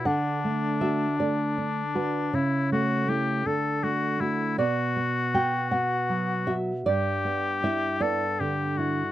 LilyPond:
<<
  \new Staff \with { instrumentName = "Oboe" } { \time 6/8 \key d \major \tempo 4. = 53 d'2. | e'8 fis'8 g'8 a'8 fis'8 e'8 | \key b \minor fis'2~ fis'8 r8 | g'4. a'8 g'8 fis'8 | }
  \new Staff \with { instrumentName = "Nylon-string guitar" } { \time 6/8 \key d \major << { fis''4 e''8 d''4 b'8 | cis''4 r2 | \key b \minor d''4 g''8 fis''4 e''8 | d''4 e''8 d''4. | } \\ { d8 a8 fis'8 a8 d'8 fis'8 | cis8 a8 <a e'>8 d8 a8 <a fis'>8 | b,8 b8 fis'8 b8 fis8 fis'8 | g,8 b8 e'8 b8 d8 e'8 | } >> }
>>